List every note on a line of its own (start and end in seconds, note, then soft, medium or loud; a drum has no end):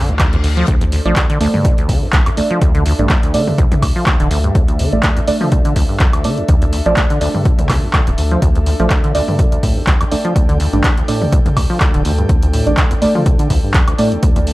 0.00 0.10 D3 loud
0.00 14.53 D4 medium
0.00 14.53 A4 medium
0.00 1.63 C5 medium
0.00 reverse cymbal medium
0.09 0.64 D2 medium
0.09 0.15 D2 loud
0.09 closed hi-hat soft
0.19 0.27 D2 loud
0.19 kick loud
0.19 clap loud
0.19 closed hi-hat medium
0.19 high woodblock medium
0.33 0.36 E2 loud
0.33 closed hi-hat medium
0.44 0.48 D2 medium
0.44 open hi-hat medium
0.57 0.66 F3 loud
0.57 closed hi-hat soft
0.68 1.00 D2 loud
0.68 0.75 D2 loud
0.68 kick loud
0.68 closed hi-hat medium
0.81 0.85 E2 loud
0.81 closed hi-hat medium
0.92 0.97 D2 medium
0.92 open hi-hat loud
1.05 1.14 A1 loud
1.05 1.14 F3 loud
1.05 1.17 A3 medium
1.05 1.17 D4 medium
1.05 1.17 D5 medium
1.05 closed hi-hat soft
1.16 1.27 D2 medium
1.16 kick loud
1.16 clap loud
1.16 closed hi-hat medium
1.30 1.39 D3 loud
1.30 closed hi-hat medium
1.40 1.48 D2 loud
1.40 2.35 A3 loud
1.40 2.35 D4 medium
1.40 2.35 D5 loud
1.40 open hi-hat medium
1.54 1.66 G2 medium
1.54 mid tom medium
1.61 1.72 F2 medium
1.61 9.37 E5 medium
1.61 kick loud
1.61 closed hi-hat medium
1.78 1.91 D2 medium
1.78 closed hi-hat medium
1.89 1.99 D2 medium
1.89 2.04 D3 loud
1.89 kick medium
1.89 open hi-hat loud
2.02 2.08 D2 loud
2.13 2.23 C2 medium
2.13 2.20 D2 loud
2.13 kick loud
2.13 clap loud
2.13 closed hi-hat medium
2.26 2.30 E2 loud
2.26 closed hi-hat medium
2.26 high woodblock medium
2.37 2.42 D2 medium
2.37 2.46 A3 medium
2.37 2.46 D4 medium
2.37 2.46 D5 medium
2.37 open hi-hat medium
2.51 2.60 F3 loud
2.51 closed hi-hat soft
2.61 2.72 D2 medium
2.61 2.94 D2 loud
2.61 kick loud
2.61 closed hi-hat medium
2.75 2.84 D3 loud
2.75 closed hi-hat soft
2.86 2.93 D2 loud
2.86 open hi-hat loud
2.99 3.07 A1 loud
2.99 3.11 G2 medium
2.99 3.06 A3 medium
2.99 3.06 D4 medium
2.99 3.06 D5 medium
2.99 closed hi-hat soft
3.10 3.17 F2 medium
3.10 kick loud
3.10 clap loud
3.10 closed hi-hat medium
3.23 3.35 D2 medium
3.23 closed hi-hat soft
3.34 3.49 D3 loud
3.34 4.89 A3 medium
3.34 4.89 D4 medium
3.34 4.89 D5 medium
3.34 open hi-hat medium
3.47 3.53 D2 loud
3.47 mid tom medium
3.58 3.66 D2 loud
3.58 kick loud
3.58 closed hi-hat medium
3.72 3.75 E2 loud
3.72 closed hi-hat medium
3.72 mid tom medium
3.82 3.93 D2 medium
3.82 3.87 D2 medium
3.82 kick medium
3.82 open hi-hat loud
3.82 high woodblock medium
3.96 4.05 F3 loud
4.06 4.18 D2 medium
4.06 kick loud
4.06 clap loud
4.06 closed hi-hat medium
4.06 high woodblock medium
4.20 4.28 D1 medium
4.20 4.29 D3 loud
4.20 closed hi-hat medium
4.31 4.38 D2 loud
4.31 4.50 D2 medium
4.31 open hi-hat medium
4.44 4.57 G2 medium
4.44 closed hi-hat soft
4.55 4.87 D2 loud
4.55 4.62 F2 medium
4.55 kick loud
4.55 closed hi-hat medium
4.68 4.81 D2 medium
4.68 closed hi-hat soft
4.79 4.94 D3 loud
4.79 open hi-hat loud
4.92 5.01 A1 loud
4.92 4.98 D2 loud
4.92 5.04 A3 medium
4.92 5.04 D4 medium
4.92 5.04 D5 medium
4.92 closed hi-hat soft
5.03 5.11 D2 medium
5.03 kick loud
5.03 clap loud
5.03 closed hi-hat medium
5.16 5.20 E2 loud
5.16 closed hi-hat soft
5.27 5.32 D2 medium
5.27 6.22 A3 loud
5.27 6.22 D4 medium
5.27 6.22 D5 loud
5.27 open hi-hat loud
5.41 5.50 F3 loud
5.41 mid tom medium
5.52 5.63 D2 medium
5.52 kick loud
5.52 closed hi-hat medium
5.65 5.74 D3 loud
5.65 closed hi-hat soft
5.76 5.83 D2 loud
5.76 5.86 D2 medium
5.76 kick medium
5.76 open hi-hat loud
5.89 6.02 G2 medium
6.00 6.10 C2 medium
6.00 6.08 F2 medium
6.00 kick loud
6.00 clap loud
6.00 closed hi-hat medium
6.13 6.26 D2 medium
6.13 closed hi-hat medium
6.13 high woodblock medium
6.24 6.39 D3 loud
6.24 6.33 A3 medium
6.24 6.33 D4 medium
6.24 6.33 D5 medium
6.24 open hi-hat medium
6.38 6.44 D2 loud
6.38 closed hi-hat soft
6.48 6.56 D2 loud
6.48 6.81 D2 loud
6.48 kick loud
6.48 closed hi-hat medium
6.62 6.65 E2 loud
6.62 closed hi-hat soft
6.73 6.77 D2 medium
6.73 open hi-hat loud
6.86 6.94 A1 loud
6.86 6.95 F3 loud
6.86 6.93 A3 medium
6.86 6.93 D4 medium
6.86 6.93 D5 medium
6.86 closed hi-hat soft
6.97 7.08 D2 medium
6.97 kick loud
6.97 clap loud
6.97 closed hi-hat medium
7.10 7.19 D3 loud
7.10 closed hi-hat soft
7.21 7.28 D2 loud
7.21 8.76 A3 medium
7.21 8.76 D4 medium
7.21 8.76 D5 medium
7.21 open hi-hat medium
7.34 7.47 G2 medium
7.34 mid tom medium
7.45 7.53 F2 medium
7.45 kick loud
7.45 closed hi-hat medium
7.59 7.71 D2 medium
7.59 closed hi-hat soft
7.59 mid tom medium
7.69 7.80 D2 medium
7.69 7.84 D3 loud
7.69 kick medium
7.69 clap medium
7.69 open hi-hat loud
7.69 high woodblock medium
7.83 7.89 D2 loud
7.93 8.01 D2 loud
7.93 kick loud
7.93 clap loud
7.93 closed hi-hat medium
7.93 high woodblock medium
8.07 8.15 D1 medium
8.07 8.11 E2 loud
8.07 closed hi-hat soft
8.18 8.37 D2 medium
8.18 8.22 D2 medium
8.18 open hi-hat medium
8.31 8.40 F3 loud
8.31 closed hi-hat soft
8.42 8.75 D2 loud
8.42 8.49 D2 loud
8.42 kick loud
8.42 closed hi-hat medium
8.55 8.59 E2 loud
8.55 closed hi-hat soft
8.66 8.71 D2 medium
8.66 open hi-hat loud
8.80 8.88 A1 loud
8.80 8.89 F3 loud
8.80 8.91 A3 medium
8.80 8.91 D4 medium
8.80 8.91 D5 medium
8.80 closed hi-hat soft
8.90 9.02 D2 medium
8.90 kick loud
8.90 clap loud
8.90 closed hi-hat medium
9.04 9.13 D3 loud
9.04 closed hi-hat soft
9.15 9.22 D2 loud
9.15 10.09 A3 loud
9.15 10.09 D4 medium
9.15 10.09 D5 loud
9.15 open hi-hat medium
9.28 9.41 G2 medium
9.28 mid tom medium
9.35 9.46 F2 medium
9.35 14.53 G5 medium
9.35 kick loud
9.35 closed hi-hat medium
9.52 9.58 D2 medium
9.52 closed hi-hat soft
9.63 9.73 D2 medium
9.63 9.78 A2 medium
9.63 kick medium
9.63 open hi-hat loud
9.76 9.82 D2 loud
9.87 9.97 C2 medium
9.87 9.95 D2 loud
9.87 kick loud
9.87 clap loud
9.87 closed hi-hat medium
10.01 10.04 E2 loud
10.01 closed hi-hat soft
10.01 high woodblock medium
10.11 10.16 D2 medium
10.11 10.20 A3 medium
10.11 10.20 D4 medium
10.11 10.20 D5 medium
10.11 open hi-hat medium
10.25 10.34 F3 loud
10.25 closed hi-hat soft
10.36 10.47 D2 medium
10.36 10.68 D2 loud
10.36 kick loud
10.36 closed hi-hat medium
10.49 10.58 D3 loud
10.49 closed hi-hat soft
10.60 10.67 D2 loud
10.60 open hi-hat medium
10.73 10.81 A1 loud
10.73 10.86 G2 medium
10.73 10.80 A3 medium
10.73 10.80 D4 medium
10.73 10.80 D5 medium
10.73 closed hi-hat soft
10.84 10.91 F2 medium
10.84 kick loud
10.84 clap loud
10.84 closed hi-hat medium
10.97 11.03 D2 medium
10.97 closed hi-hat medium
11.08 11.23 A2 medium
11.08 12.63 A3 medium
11.08 12.63 D4 medium
11.08 12.63 D5 medium
11.08 open hi-hat medium
11.21 11.28 D2 loud
11.21 mid tom medium
11.32 11.40 D2 loud
11.32 kick loud
11.32 closed hi-hat medium
11.46 11.49 E2 loud
11.46 closed hi-hat medium
11.46 mid tom medium
11.57 11.61 D2 medium
11.57 11.67 D2 medium
11.57 kick medium
11.57 open hi-hat loud
11.57 high woodblock medium
11.70 11.79 F3 loud
11.80 11.92 D2 medium
11.80 kick loud
11.80 clap loud
11.80 closed hi-hat medium
11.80 high woodblock medium
11.94 12.02 D1 medium
11.94 12.03 D3 loud
11.94 closed hi-hat medium
12.05 12.24 D2 medium
12.05 12.12 D2 loud
12.05 open hi-hat medium
12.18 12.31 G2 medium
12.18 closed hi-hat soft
12.29 12.62 D2 loud
12.29 12.37 F2 medium
12.29 kick loud
12.29 closed hi-hat medium
12.43 12.49 D2 medium
12.43 closed hi-hat soft
12.53 12.68 A2 medium
12.53 open hi-hat loud
12.67 12.75 A1 loud
12.67 12.73 D2 loud
12.67 12.78 A3 medium
12.67 12.78 D4 medium
12.67 12.78 D5 medium
12.67 closed hi-hat soft
12.77 12.85 D2 medium
12.77 kick loud
12.77 clap loud
12.77 closed hi-hat medium
12.91 12.95 E2 loud
12.91 closed hi-hat medium
13.02 13.06 D2 medium
13.02 13.96 A3 loud
13.02 13.96 D4 medium
13.02 13.96 D5 loud
13.02 open hi-hat medium
13.15 13.24 F3 loud
13.15 mid tom medium
13.26 13.37 D2 medium
13.26 kick loud
13.26 closed hi-hat medium
13.39 13.48 D3 loud
13.39 closed hi-hat medium
13.50 13.57 D2 loud
13.50 13.60 D2 medium
13.50 kick medium
13.50 open hi-hat loud
13.63 13.76 G2 medium
13.74 13.85 C2 medium
13.74 13.82 F2 medium
13.74 kick loud
13.74 clap loud
13.74 closed hi-hat medium
13.88 13.94 D2 medium
13.88 closed hi-hat medium
13.88 high woodblock medium
13.99 14.13 A2 medium
13.99 14.07 A3 medium
13.99 14.07 D4 medium
13.99 14.07 D5 medium
13.99 open hi-hat medium
14.12 14.18 D2 loud
14.12 closed hi-hat soft
14.23 14.53 D2 loud
14.23 14.30 D2 loud
14.23 kick loud
14.23 closed hi-hat medium
14.36 14.40 E2 loud
14.36 closed hi-hat medium
14.47 14.51 D2 medium
14.47 open hi-hat medium